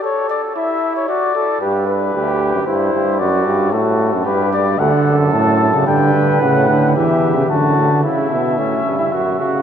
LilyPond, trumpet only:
\new Staff \with { instrumentName = "Trumpet" } { \time 3/4 \key g \major \tempo 4 = 112 a'4 e'4 fis'8 a'8 | b'8. r16 g'4 e'4 | fis'4 fis'4 g'4 | a'2 b'4~ |
b'4 g'4 fis'4 | e'4 cis'8. e'16 fis'8 fis'8 | }